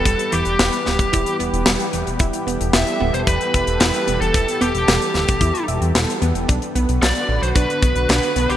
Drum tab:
HH |xxxxxx-xxxxxxxxx|xxxxxx-xxxxxxxxx|xxxxxx-xxxxxxxxx|xxxxxx-xxxxxxxxx|
SD |----o-o-----o---|----o-------o---|----o-o-----o---|----o-------o---|
BD |o------oo-------|o-------o-o-----|o------oo-------|o-------o-o-----|